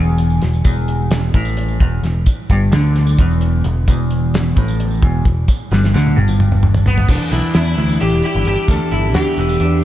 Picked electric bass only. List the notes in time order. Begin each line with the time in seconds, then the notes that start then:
Already playing: E1
0.42 E1
0.65 E1
1.34 A1
1.81 E1
2.03 E1
2.50 G1
2.72 D2
3.19 E1
3.65 E1
3.88 E1
4.57 A1
5.03 E1
5.25 E1
5.72 G1
5.94 D2
6.17 G1
7.09 E1
7.32 B1
7.55 E2
7.77 D2
8.01 A1
8.12 E1
8.35 G1
8.46 G1
8.68 D2
8.92 G1
9.15 D2
9.38 E1
9.60 E2